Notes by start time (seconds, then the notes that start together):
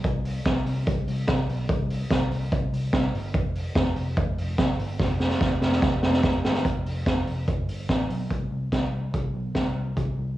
0.04 C2, kick, closed hi-hat
0.25 open hi-hat
0.45 C2, kick, snare, closed hi-hat
0.66 C2, open hi-hat
0.86 C2, kick, closed hi-hat
1.07 C2, open hi-hat
1.27 C2, kick, snare, closed hi-hat
1.49 B1, open hi-hat
1.69 C2, kick, closed hi-hat
1.90 open hi-hat
2.11 C2, kick, snare, closed hi-hat
2.31 C2, open hi-hat
2.52 C2, kick, closed hi-hat
2.73 C2, open hi-hat
2.93 C2, kick, snare, closed hi-hat
3.14 G1, open hi-hat
3.34 F1, kick, closed hi-hat
3.55 open hi-hat
3.75 F1, kick, snare, closed hi-hat
3.96 F1, open hi-hat
4.17 F1, kick, closed hi-hat
4.37 F1, open hi-hat
4.58 F1, kick, snare, closed hi-hat
4.78 G1, open hi-hat
4.99 F1, kick, snare
5.20 snare
5.30 snare
5.41 F1, kick, snare
5.61 F1, snare
5.72 snare
5.82 F1, kick, snare
6.03 F1, snare
6.13 snare
6.23 F1, kick, snare
6.44 G1, snare
6.55 snare
6.65 F1, kick, closed hi-hat
6.85 F1, open hi-hat
7.06 F1, kick, snare, closed hi-hat
7.27 F1, open hi-hat
7.48 F1, kick, closed hi-hat
7.68 G1, open hi-hat
7.89 A1, kick, snare, closed hi-hat
8.10 B1, open hi-hat
8.30 C2, kick, closed hi-hat
8.51 C2
8.72 C2, kick, snare, closed hi-hat
8.93 C2
9.14 C2, kick, closed hi-hat
9.34 B1
9.55 C2, kick, snare, closed hi-hat
9.75 C2
9.97 C2, kick, closed hi-hat
10.18 C2